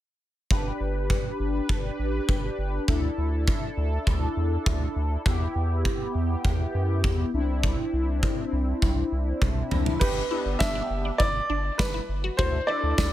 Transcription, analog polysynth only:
0.51 2.84 D4 medium
0.51 2.84 G4 medium
0.51 2.84 B4 medium
2.88 5.22 D4 medium
2.88 5.22 E4 medium
2.88 5.22 A4 medium
5.26 7.30 B3 medium
5.26 7.30 E4 medium
5.26 7.30 G4 medium
7.34 9.97 C4 medium
7.34 9.97 D4 medium
7.34 9.97 E4 medium
10.01 10.21 B3 medium
10.01 10.21 D4 medium
10.01 10.21 G4 medium
10.31 11.11 B3 medium
10.31 11.11 D4 medium
10.31 11.11 G4 medium
12.39 12.59 D4 medium
12.39 12.59 E4 medium
12.39 12.59 A4 medium
12.68 13.13 D4 medium
12.68 13.13 E4 medium
12.68 13.13 A4 medium

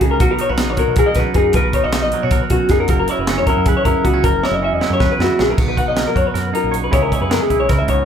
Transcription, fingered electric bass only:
0.01 0.18 C#2 medium
0.20 0.37 B1 loud
0.50 0.69 B1 loud
0.69 0.77 A#1 medium
0.88 1.05 B2 medium
1.16 1.25 B2 medium
1.35 1.52 F#2 medium
1.54 1.72 B1 loud
1.85 2.05 B1 medium
2.05 2.13 A#1 medium
2.24 2.40 B2 medium
2.51 2.59 B2 medium
2.70 2.87 F#2 medium
2.89 3.06 F#1 medium
3.19 3.40 F#1 medium
3.40 3.47 E1 medium
3.57 3.74 F#2 medium
3.86 3.94 F#2 medium
4.05 4.22 C#2 medium
4.24 4.41 F#1 loud
4.51 4.71 F#1 medium
4.71 4.80 E1 medium
4.90 5.08 F#2 medium
5.19 5.28 F#2 medium
5.40 5.57 A#1 medium
5.58 5.84 B1 medium
5.88 6.05 B1 medium
6.16 6.24 F#2 medium
6.34 6.52 F#2 medium
6.64 6.83 A#1 medium
6.83 6.92 B1 medium
6.92 7.18 C#2 medium
7.21 7.38 F#2 medium
7.51 7.68 B1 medium
7.69 7.78 C#3 medium
7.82 8.05 C#2 medium

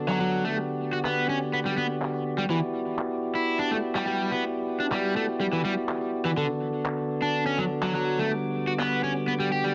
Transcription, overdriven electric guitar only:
0.08 0.19 F#3 medium
0.20 0.43 F#3 medium
0.45 0.56 A3 medium
0.93 0.98 F#4 medium
1.05 1.28 B3 medium
1.29 1.37 C#4 medium
1.54 1.58 B3 medium
1.66 1.74 G3 medium
1.78 1.86 B3 medium
2.38 2.43 G3 medium
2.50 2.58 E3 medium
3.35 3.58 E4 medium
3.59 3.71 D4 medium
3.71 3.76 A3 medium
3.95 4.06 G3 medium
4.07 4.30 G3 medium
4.32 4.43 B3 medium
4.80 4.85 D4 medium
4.92 5.15 G3 medium
5.16 5.24 A3 medium
5.41 5.45 G3 medium
5.53 5.61 E3 medium
5.65 5.73 G3 loud
6.25 6.30 E3 loud
6.37 6.45 D3 loud
7.22 7.45 D4 medium
7.46 7.58 C#4 medium
7.58 7.63 F#3 medium
7.83 7.93 F#3 medium
7.95 8.18 F#3 medium
8.19 8.30 A3 medium
8.67 8.72 F#4 medium
8.80 9.02 B3 medium
9.04 9.11 C#4 medium
9.28 9.32 B3 medium
9.40 9.48 G3 medium
9.52 9.63 G4 medium
9.64 9.74 G3 medium

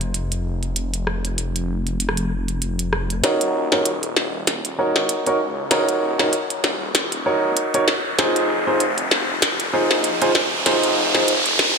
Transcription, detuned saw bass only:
0.00 3.21 F1 medium
3.24 3.39 D#1 loud
3.41 3.70 D#1 medium
3.73 4.63 D#1 loud
4.65 4.93 D#1 medium
4.96 5.38 G#1 loud
5.41 5.86 C#2 loud
5.89 6.31 D#1 medium
6.64 7.55 D#1 medium
8.18 8.33 F1 loud
8.36 8.64 F1 medium
8.67 9.57 F1 loud
9.60 9.88 F1 medium
9.91 10.33 A#1 loud
10.35 10.81 D#1 loud
10.84 11.26 F1 loud
11.28 11.74 F1 loud

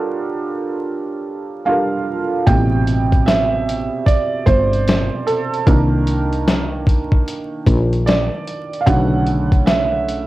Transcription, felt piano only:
0.00 1.61 G3 medium
0.00 1.62 D4 medium
0.00 1.63 F4 medium
0.00 1.64 A4 medium
0.00 1.65 A#4 medium
0.00 2.48 C#5 soft
0.00 2.48 F#5 medium
1.65 2.46 G3 soft
1.65 2.46 D4 soft
1.65 2.47 F4 soft
1.65 2.48 A4 soft
1.65 2.49 F5 medium
1.70 2.48 A#4 soft
2.46 5.64 B2 medium
2.46 5.63 C3 medium
2.46 5.63 G3 soft
2.46 3.29 G5 loud
3.26 4.02 E5 medium
4.06 4.44 D5 medium
4.46 5.29 C5 loud
5.27 5.64 A4 medium
5.67 8.83 D#3 medium
5.67 8.83 A#3 soft
5.67 8.84 D4 medium
5.67 7.23 A#4 medium
8.06 8.84 D5 medium
8.81 8.86 F5 medium
8.86 10.27 C#3 medium
8.86 10.27 D3 medium
8.86 10.27 A3 soft
8.86 9.69 F#5 medium
9.66 10.27 E5 medium

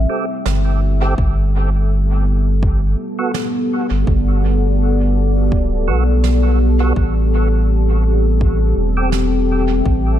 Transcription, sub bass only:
0.46 1.15 G1 medium
1.18 2.96 G1 medium
3.91 4.05 G1 medium
4.07 5.51 G1 medium
5.52 5.89 D1 medium
5.88 6.93 B1 medium
6.96 8.74 A1 medium
8.77 9.82 E1 medium
9.86 10.19 A1 medium

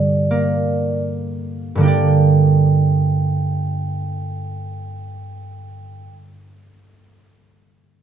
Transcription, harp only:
0.00 1.74 G2 medium
0.00 1.76 D3 soft
0.00 1.86 G3 soft
0.31 1.80 A#3 soft
1.75 6.05 G2 soft
1.75 6.07 D3 soft
1.80 6.10 A#3 soft
1.80 6.12 D4 soft
1.85 6.14 G4 soft
1.85 6.17 D5 soft

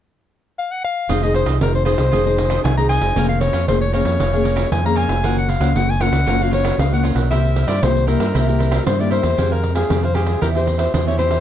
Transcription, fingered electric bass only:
1.09 1.42 F1 medium
1.46 1.58 C2 medium
1.61 1.94 F1 loud
1.98 2.10 C2 medium
2.12 2.57 F1 loud
2.64 2.98 C2 medium
3.01 3.13 F1 medium
3.15 3.49 F1 loud
3.53 3.65 F2 medium
3.68 4.01 F1 loud
4.05 4.17 F2 medium
4.19 4.64 F1 medium
4.72 5.05 F2 medium
5.08 5.23 F1 medium
5.23 5.56 F#1 loud
5.60 5.72 C#2 medium
5.75 6.08 F#1 loud
6.11 6.24 C#2 medium
6.26 6.71 F#1 medium
6.78 7.12 C#2 medium
7.15 7.30 B1 medium
7.30 7.64 C2 medium
7.67 7.79 G2 medium
7.82 8.16 C2 loud
8.19 8.31 G2 medium
8.35 8.79 C2 medium
8.86 9.20 G2 medium
9.23 9.35 E2 medium
9.38 9.82 F2 medium
9.90 10.34 F2 medium
10.42 10.86 E2 medium
10.94 11.38 E2 medium

